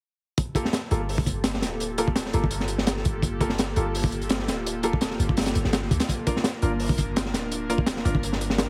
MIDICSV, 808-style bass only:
0, 0, Header, 1, 2, 480
1, 0, Start_track
1, 0, Key_signature, -2, "minor"
1, 0, Tempo, 357143
1, 504, Time_signature, 4, 2, 24, 8
1, 11682, End_track
2, 0, Start_track
2, 0, Title_t, "808-style bass"
2, 0, Program_c, 0, 38
2, 1227, Note_on_c, 0, 31, 96
2, 2183, Note_on_c, 0, 26, 98
2, 2203, Note_off_c, 0, 31, 0
2, 3125, Note_off_c, 0, 26, 0
2, 3147, Note_on_c, 0, 31, 98
2, 4087, Note_off_c, 0, 31, 0
2, 4106, Note_on_c, 0, 31, 101
2, 5047, Note_off_c, 0, 31, 0
2, 5061, Note_on_c, 0, 31, 97
2, 6026, Note_on_c, 0, 26, 99
2, 6046, Note_off_c, 0, 31, 0
2, 6967, Note_off_c, 0, 26, 0
2, 6982, Note_on_c, 0, 31, 94
2, 7459, Note_off_c, 0, 31, 0
2, 7467, Note_on_c, 0, 31, 92
2, 7579, Note_off_c, 0, 31, 0
2, 7593, Note_on_c, 0, 31, 85
2, 7927, Note_off_c, 0, 31, 0
2, 7943, Note_on_c, 0, 38, 81
2, 8058, Note_off_c, 0, 38, 0
2, 8904, Note_on_c, 0, 31, 96
2, 9865, Note_on_c, 0, 26, 97
2, 9886, Note_off_c, 0, 31, 0
2, 10807, Note_off_c, 0, 26, 0
2, 10822, Note_on_c, 0, 31, 100
2, 11682, Note_off_c, 0, 31, 0
2, 11682, End_track
0, 0, End_of_file